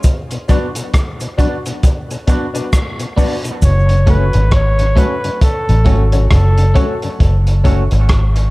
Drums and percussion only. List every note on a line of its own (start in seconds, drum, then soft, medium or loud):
0.03 kick loud
0.03 closed hi-hat medium
0.03 cabasa medium
0.31 closed hi-hat soft
0.31 cabasa medium
0.49 kick medium
0.49 closed hi-hat medium
0.49 cabasa soft
0.75 closed hi-hat soft
0.75 cabasa medium
0.94 kick loud
0.94 cross-stick loud
0.94 closed hi-hat medium
0.94 cabasa medium
1.20 closed hi-hat medium
1.20 cabasa soft
1.39 kick medium
1.39 closed hi-hat medium
1.39 cabasa medium
1.66 closed hi-hat medium
1.66 cabasa medium
1.83 kick loud
1.83 closed hi-hat medium
1.83 cabasa medium
2.11 closed hi-hat soft
2.11 cabasa medium
2.28 kick medium
2.28 closed hi-hat medium
2.28 cabasa soft
2.55 closed hi-hat medium
2.55 cabasa medium
2.73 kick medium
2.73 cross-stick loud
2.73 closed hi-hat medium
2.73 cabasa medium
3.00 closed hi-hat medium
3.00 cabasa soft
3.17 kick medium
3.17 open hi-hat medium
3.17 cabasa medium
3.44 closed hi-hat soft
3.44 cabasa medium
3.62 kick loud
3.62 closed hi-hat medium
3.62 cabasa medium
3.89 closed hi-hat soft
4.07 kick medium
4.07 closed hi-hat medium
4.33 closed hi-hat medium
4.51 kick medium
4.51 cross-stick loud
4.51 closed hi-hat medium
4.79 closed hi-hat medium
4.97 kick medium
4.97 closed hi-hat medium
5.24 closed hi-hat medium
5.41 kick loud
5.41 closed hi-hat loud
5.69 closed hi-hat soft
5.86 kick medium
5.86 closed hi-hat medium
6.12 closed hi-hat medium
6.31 kick loud
6.31 cross-stick medium
6.31 closed hi-hat medium
6.58 closed hi-hat medium
6.76 kick medium
6.76 closed hi-hat medium
7.02 closed hi-hat soft
7.20 kick loud
7.20 closed hi-hat medium
7.47 closed hi-hat soft
7.65 kick medium
7.65 closed hi-hat medium
7.91 closed hi-hat medium
8.09 kick medium
8.09 cross-stick loud
8.09 closed hi-hat medium
8.36 closed hi-hat medium